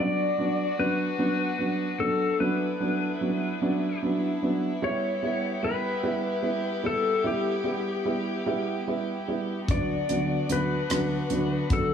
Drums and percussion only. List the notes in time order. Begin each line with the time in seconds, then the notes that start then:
9.68 kick, closed hi-hat
10.09 closed hi-hat
10.49 closed hi-hat
10.90 cross-stick, closed hi-hat
11.30 closed hi-hat
11.70 kick, closed hi-hat